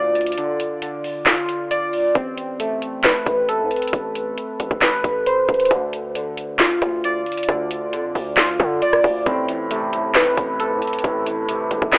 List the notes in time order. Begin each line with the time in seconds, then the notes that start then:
Already playing: D2 D3 F4 D5
0.15 closed hi-hat
0.21 closed hi-hat
0.26 closed hi-hat
0.32 closed hi-hat
0.38 D3, closed hi-hat
0.60 closed hi-hat
0.82 D3, closed hi-hat
1.04 open hi-hat
1.26 F4, snare, clap, closed hi-hat
1.49 closed hi-hat
1.71 D5, closed hi-hat
1.93 open hi-hat
2.15 A1 C4, kick, closed hi-hat
2.38 closed hi-hat
2.60 A3, closed hi-hat
2.82 closed hi-hat
3.04 B4, snare, clap, closed hi-hat
3.26 A1, kick, closed hi-hat
3.49 A4, closed hi-hat
3.60 A2
3.71 closed hi-hat
3.76 closed hi-hat
3.82 closed hi-hat
3.88 closed hi-hat
3.93 A1, kick, closed hi-hat
4.15 closed hi-hat
4.38 closed hi-hat
4.60 A1, closed hi-hat
4.71 A1, kick
4.82 B4, snare, clap, closed hi-hat
5.04 A1, kick, closed hi-hat
5.26 C5, closed hi-hat
5.49 A1, kick, closed hi-hat
5.54 closed hi-hat
5.60 closed hi-hat
5.65 closed hi-hat
5.71 D2 D3, kick, closed hi-hat
5.93 closed hi-hat
6.15 D3, closed hi-hat
6.38 closed hi-hat
6.59 F4, snare, clap, closed hi-hat
6.82 D2, kick, closed hi-hat
7.04 D5, closed hi-hat
7.26 closed hi-hat
7.32 closed hi-hat
7.38 closed hi-hat
7.43 closed hi-hat
7.49 D2 D3, kick, closed hi-hat
7.71 closed hi-hat
7.93 F2 D3, closed hi-hat
8.15 D2, open hi-hat
8.37 F4, snare, clap, closed hi-hat
8.60 D3, kick, closed hi-hat
8.82 D5, closed hi-hat
8.93 cross-stick
9.04 D2, kick, open hi-hat
9.26 A1 A2 C4, kick, closed hi-hat
9.49 E3, closed hi-hat
9.71 C3 A3, closed hi-hat
9.93 A2, closed hi-hat
10.15 A2 B4, snare, clap, closed hi-hat
10.37 A1, kick, closed hi-hat
10.60 A4, closed hi-hat
10.71 A2
10.82 closed hi-hat
10.87 closed hi-hat
10.93 closed hi-hat
10.99 closed hi-hat
11.04 A1 A2, kick, closed hi-hat
11.26 E3, closed hi-hat
11.48 C3, closed hi-hat
11.71 A1 A2, closed hi-hat
11.82 A1, kick
11.93 A2 B4, snare, clap, closed hi-hat